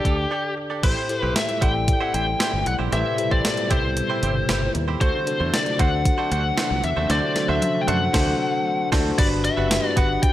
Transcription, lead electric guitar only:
0, 0, Header, 1, 2, 480
1, 0, Start_track
1, 0, Tempo, 521739
1, 769, Time_signature, 4, 2, 24, 8
1, 9502, End_track
2, 0, Start_track
2, 0, Title_t, "Lead electric guitar"
2, 0, Program_c, 0, 29
2, 0, Note_on_c, 0, 67, 70
2, 493, Note_off_c, 0, 67, 0
2, 773, Note_on_c, 0, 72, 86
2, 1104, Note_off_c, 0, 72, 0
2, 1104, Note_on_c, 0, 71, 86
2, 1218, Note_off_c, 0, 71, 0
2, 1254, Note_on_c, 0, 76, 90
2, 1492, Note_on_c, 0, 79, 97
2, 1499, Note_off_c, 0, 76, 0
2, 1851, Note_off_c, 0, 79, 0
2, 1851, Note_on_c, 0, 78, 97
2, 1965, Note_off_c, 0, 78, 0
2, 1976, Note_on_c, 0, 79, 96
2, 2454, Note_off_c, 0, 79, 0
2, 2458, Note_on_c, 0, 78, 90
2, 2521, Note_off_c, 0, 78, 0
2, 2695, Note_on_c, 0, 76, 86
2, 3027, Note_off_c, 0, 76, 0
2, 3054, Note_on_c, 0, 74, 85
2, 3418, Note_on_c, 0, 72, 76
2, 3422, Note_off_c, 0, 74, 0
2, 4337, Note_off_c, 0, 72, 0
2, 4612, Note_on_c, 0, 72, 95
2, 5092, Note_on_c, 0, 74, 92
2, 5105, Note_off_c, 0, 72, 0
2, 5314, Note_off_c, 0, 74, 0
2, 5330, Note_on_c, 0, 78, 105
2, 5805, Note_off_c, 0, 78, 0
2, 5816, Note_on_c, 0, 78, 98
2, 6294, Note_on_c, 0, 76, 93
2, 6307, Note_off_c, 0, 78, 0
2, 6515, Note_off_c, 0, 76, 0
2, 6539, Note_on_c, 0, 74, 96
2, 6869, Note_off_c, 0, 74, 0
2, 6893, Note_on_c, 0, 76, 91
2, 7188, Note_on_c, 0, 79, 68
2, 7196, Note_off_c, 0, 76, 0
2, 7247, Note_off_c, 0, 79, 0
2, 7251, Note_on_c, 0, 78, 93
2, 8173, Note_off_c, 0, 78, 0
2, 8449, Note_on_c, 0, 74, 95
2, 8514, Note_off_c, 0, 74, 0
2, 8691, Note_on_c, 0, 76, 99
2, 9087, Note_off_c, 0, 76, 0
2, 9087, Note_on_c, 0, 74, 99
2, 9172, Note_on_c, 0, 78, 96
2, 9185, Note_off_c, 0, 74, 0
2, 9409, Note_off_c, 0, 78, 0
2, 9412, Note_on_c, 0, 79, 101
2, 9502, Note_off_c, 0, 79, 0
2, 9502, End_track
0, 0, End_of_file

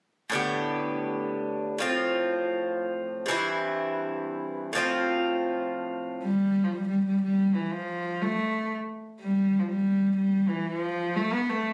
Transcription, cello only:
0, 0, Header, 1, 2, 480
1, 0, Start_track
1, 0, Tempo, 493421
1, 304, Time_signature, 3, 2, 24, 8
1, 11413, End_track
2, 0, Start_track
2, 0, Title_t, "Cello"
2, 0, Program_c, 0, 42
2, 6066, Note_on_c, 0, 55, 79
2, 6461, Note_on_c, 0, 53, 68
2, 6475, Note_off_c, 0, 55, 0
2, 6537, Note_on_c, 0, 55, 78
2, 6552, Note_off_c, 0, 53, 0
2, 6686, Note_off_c, 0, 55, 0
2, 6692, Note_on_c, 0, 55, 68
2, 6854, Note_off_c, 0, 55, 0
2, 6860, Note_on_c, 0, 55, 76
2, 7012, Note_off_c, 0, 55, 0
2, 7027, Note_on_c, 0, 55, 87
2, 7345, Note_on_c, 0, 52, 75
2, 7360, Note_off_c, 0, 55, 0
2, 7508, Note_on_c, 0, 53, 89
2, 7523, Note_off_c, 0, 52, 0
2, 8000, Note_on_c, 0, 57, 89
2, 8015, Note_off_c, 0, 53, 0
2, 8473, Note_off_c, 0, 57, 0
2, 8954, Note_on_c, 0, 55, 82
2, 9334, Note_on_c, 0, 53, 62
2, 9349, Note_off_c, 0, 55, 0
2, 9417, Note_on_c, 0, 55, 92
2, 9431, Note_off_c, 0, 53, 0
2, 9886, Note_off_c, 0, 55, 0
2, 9892, Note_on_c, 0, 55, 83
2, 10200, Note_on_c, 0, 52, 77
2, 10215, Note_off_c, 0, 55, 0
2, 10362, Note_off_c, 0, 52, 0
2, 10362, Note_on_c, 0, 52, 91
2, 10469, Note_off_c, 0, 52, 0
2, 10469, Note_on_c, 0, 53, 91
2, 10858, Note_on_c, 0, 57, 93
2, 10872, Note_off_c, 0, 53, 0
2, 11024, Note_on_c, 0, 59, 80
2, 11039, Note_off_c, 0, 57, 0
2, 11182, Note_on_c, 0, 57, 82
2, 11197, Note_off_c, 0, 59, 0
2, 11343, Note_off_c, 0, 57, 0
2, 11413, End_track
0, 0, End_of_file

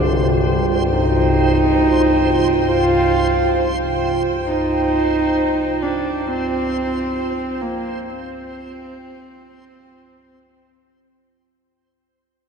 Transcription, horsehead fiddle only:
0, 0, Header, 1, 2, 480
1, 0, Start_track
1, 0, Key_signature, -3, "minor"
1, 0, Tempo, 500000
1, 11988, End_track
2, 0, Start_track
2, 0, Title_t, "Horsehead fiddle"
2, 0, Program_c, 0, 110
2, 0, Note_on_c, 0, 62, 80
2, 432, Note_off_c, 0, 62, 0
2, 858, Note_on_c, 0, 63, 102
2, 2579, Note_on_c, 0, 65, 112
2, 2594, Note_off_c, 0, 63, 0
2, 3869, Note_off_c, 0, 65, 0
2, 4290, Note_on_c, 0, 63, 121
2, 5589, Note_on_c, 0, 62, 101
2, 5603, Note_off_c, 0, 63, 0
2, 6022, Note_on_c, 0, 60, 106
2, 6036, Note_off_c, 0, 62, 0
2, 7306, Note_on_c, 0, 58, 95
2, 7321, Note_off_c, 0, 60, 0
2, 7775, Note_on_c, 0, 60, 103
2, 7789, Note_off_c, 0, 58, 0
2, 10820, Note_off_c, 0, 60, 0
2, 11988, End_track
0, 0, End_of_file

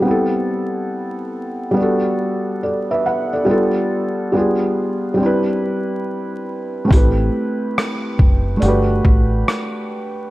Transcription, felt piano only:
0, 0, Header, 1, 2, 480
1, 0, Start_track
1, 0, Tempo, 857143
1, 32, Time_signature, 4, 2, 24, 8
1, 5770, End_track
2, 0, Start_track
2, 0, Title_t, "Felt piano"
2, 0, Program_c, 0, 0
2, 0, Note_on_c, 0, 55, 63
2, 13, Note_on_c, 0, 59, 59
2, 29, Note_on_c, 0, 60, 58
2, 44, Note_on_c, 0, 64, 64
2, 61, Note_on_c, 0, 69, 76
2, 132, Control_c, 0, 64, 127
2, 950, Note_off_c, 0, 55, 0
2, 958, Note_on_c, 0, 55, 67
2, 963, Note_off_c, 0, 59, 0
2, 971, Note_off_c, 0, 60, 0
2, 974, Note_on_c, 0, 59, 63
2, 979, Note_off_c, 0, 64, 0
2, 988, Note_off_c, 0, 69, 0
2, 991, Note_on_c, 0, 62, 59
2, 998, Control_c, 0, 64, 0
2, 1005, Note_on_c, 0, 66, 60
2, 1021, Note_on_c, 0, 69, 73
2, 1104, Control_c, 0, 64, 127
2, 1465, Note_off_c, 0, 69, 0
2, 1473, Note_on_c, 0, 74, 53
2, 1474, Note_on_c, 0, 69, 45
2, 1618, Note_off_c, 0, 69, 0
2, 1618, Note_off_c, 0, 74, 0
2, 1629, Note_on_c, 0, 76, 66
2, 1630, Note_on_c, 0, 71, 51
2, 1707, Note_off_c, 0, 71, 0
2, 1710, Note_off_c, 0, 76, 0
2, 1712, Note_on_c, 0, 78, 60
2, 1715, Note_on_c, 0, 71, 56
2, 1857, Note_off_c, 0, 78, 0
2, 1859, Note_off_c, 0, 71, 0
2, 1864, Note_on_c, 0, 74, 57
2, 1867, Note_on_c, 0, 69, 50
2, 1916, Note_off_c, 0, 55, 0
2, 1924, Note_off_c, 0, 59, 0
2, 1932, Note_off_c, 0, 62, 0
2, 1932, Note_on_c, 0, 55, 69
2, 1939, Note_on_c, 0, 59, 65
2, 1940, Note_off_c, 0, 66, 0
2, 1948, Note_on_c, 0, 62, 59
2, 1956, Note_off_c, 0, 69, 0
2, 1957, Note_on_c, 0, 65, 65
2, 1958, Control_c, 0, 64, 0
2, 1965, Note_on_c, 0, 69, 77
2, 2067, Control_c, 0, 64, 127
2, 2092, Note_off_c, 0, 74, 0
2, 2411, Note_off_c, 0, 55, 0
2, 2419, Note_off_c, 0, 59, 0
2, 2419, Note_on_c, 0, 55, 65
2, 2426, Note_off_c, 0, 62, 0
2, 2427, Note_on_c, 0, 59, 59
2, 2434, Note_off_c, 0, 65, 0
2, 2435, Note_on_c, 0, 62, 55
2, 2438, Note_off_c, 0, 69, 0
2, 2440, Control_c, 0, 64, 0
2, 2445, Note_on_c, 0, 65, 61
2, 2450, Note_on_c, 0, 68, 70
2, 2538, Control_c, 0, 64, 127
2, 2870, Note_off_c, 0, 55, 0
2, 2879, Note_on_c, 0, 55, 68
2, 2898, Note_on_c, 0, 60, 59
2, 2903, Note_off_c, 0, 62, 0
2, 2909, Note_off_c, 0, 59, 0
2, 2912, Note_on_c, 0, 62, 60
2, 2918, Note_off_c, 0, 65, 0
2, 2920, Control_c, 0, 64, 0
2, 2921, Note_off_c, 0, 68, 0
2, 2927, Note_on_c, 0, 64, 64
2, 2944, Note_on_c, 0, 71, 78
2, 3030, Control_c, 0, 64, 127
2, 3835, Note_on_c, 0, 57, 71
2, 3836, Note_off_c, 0, 55, 0
2, 3842, Note_off_c, 0, 60, 0
2, 3851, Note_on_c, 0, 60, 64
2, 3853, Note_off_c, 0, 62, 0
2, 3859, Note_off_c, 0, 64, 0
2, 3868, Note_on_c, 0, 64, 60
2, 3869, Note_off_c, 0, 71, 0
2, 3879, Control_c, 0, 64, 0
2, 3883, Note_on_c, 0, 67, 65
2, 3899, Note_on_c, 0, 71, 78
2, 3965, Control_c, 0, 64, 127
2, 4791, Note_off_c, 0, 57, 0
2, 4799, Note_on_c, 0, 57, 64
2, 4802, Note_off_c, 0, 60, 0
2, 4811, Note_off_c, 0, 64, 0
2, 4815, Note_on_c, 0, 62, 63
2, 4818, Note_off_c, 0, 67, 0
2, 4827, Note_off_c, 0, 71, 0
2, 4829, Note_on_c, 0, 66, 67
2, 4840, Control_c, 0, 64, 0
2, 4847, Note_on_c, 0, 67, 60
2, 4863, Note_on_c, 0, 71, 73
2, 4930, Control_c, 0, 64, 127
2, 5756, Note_off_c, 0, 57, 0
2, 5764, Note_off_c, 0, 62, 0
2, 5770, Note_off_c, 0, 66, 0
2, 5770, Note_off_c, 0, 67, 0
2, 5770, Note_off_c, 0, 71, 0
2, 5770, End_track
0, 0, End_of_file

